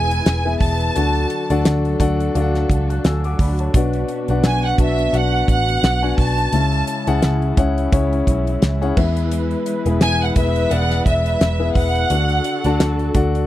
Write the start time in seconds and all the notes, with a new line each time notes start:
Already playing: E1 E3 G#3 B3 E4 G#4 B4 E5 G#5
0.11 closed hi-hat
0.26 E1, snare, closed hi-hat
0.45 B3 E4 G#4 B4 E5
0.60 E1 A5, kick, open hi-hat
0.80 closed hi-hat
0.95 D2 D3 F#3 D4 F#4 A4 D5 F#5, closed hi-hat
1.15 closed hi-hat
1.30 closed hi-hat
1.50 D2 D4 F#4 A4 D5 F#5, closed hi-hat
1.65 D2, snare, closed hi-hat
1.85 closed hi-hat
2.00 D2 D4 F#4 A4 D5 F#5, kick, closed hi-hat
2.20 closed hi-hat
2.34 D2 D4 F#4 A4 D5 F5, closed hi-hat
2.42 F#5
2.55 snare, closed hi-hat
2.69 C#2, kick, closed hi-hat
2.90 A5 F#6, closed hi-hat
3.04 D2 G#5 E6, snare, closed hi-hat
3.24 F#5 D6, closed hi-hat
3.39 D2 D5 B5, kick, open hi-hat
3.59 C#5 A5, closed hi-hat
3.74 B1 B2 B3 D4 F#4 B4 D5 F#5, kick, closed hi-hat
3.93 closed hi-hat
4.08 closed hi-hat
4.28 B1 D4 F#4 B4 D5 F#5, closed hi-hat
4.44 B1 G#5, snare, closed hi-hat
4.66 F#5
4.78 B1 D4 F#4 B4 D5 E5 A5, kick, closed hi-hat
4.99 closed hi-hat
5.13 B1 D4 F#4 B4 D5 F#5, closed hi-hat
5.48 A1 F#5, kick, closed hi-hat
5.68 closed hi-hat
5.83 B1, snare, closed hi-hat
6.02 D4 F#4 B4 D5 G#5
6.18 B1 A5, kick, open hi-hat
6.37 closed hi-hat
6.52 C#2 C#3 G#3 C#4 E4 C#5 E5, closed hi-hat
6.72 closed hi-hat
6.87 closed hi-hat
7.07 C#2 C#4 E4 G#4 C#5 F#5, closed hi-hat
7.22 C#2, snare, closed hi-hat
7.42 closed hi-hat
7.57 C#2 C#4 E4 G#4 C#5 F#5, kick, closed hi-hat
7.78 closed hi-hat
7.92 C#2 C#4 E4 G#4 C#5 E5, kick, closed hi-hat
8.13 closed hi-hat
8.27 B1, kick, closed hi-hat
8.47 closed hi-hat
8.62 C#2, snare, closed hi-hat
8.81 C#4 E4 G#4 C#5 F#5, closed hi-hat
8.97 E2 E3 B3 E4 G#4 B4 E5, kick, crash
9.17 closed hi-hat
9.32 closed hi-hat
9.51 closed hi-hat
9.66 closed hi-hat
9.86 E1 B3 E4 G#4 B4 E5, closed hi-hat
10.01 E1 G#5, snare, closed hi-hat
10.22 F#5
10.36 E1 B3 E4 G#4 B4 E5, kick, closed hi-hat
10.56 closed hi-hat
10.71 E1 B3 E4 G#4 B4 D5 F#5, closed hi-hat
10.91 snare, closed hi-hat
11.06 E1 E5, kick, closed hi-hat
11.26 closed hi-hat
11.41 E1, snare, closed hi-hat
11.59 B3 E4 G#4 B4 E5
11.75 E1 F#5, kick, open hi-hat
11.95 closed hi-hat
12.10 D2 D3 D4 F#4 A4 D5 F#5, closed hi-hat
12.29 closed hi-hat
12.44 closed hi-hat
12.64 D2 D4 F#4 A4 D5 A5, closed hi-hat
12.80 D2, snare, closed hi-hat
12.99 closed hi-hat
13.14 D2 D4 F#4 A4 D5 F#5, kick, closed hi-hat
13.35 closed hi-hat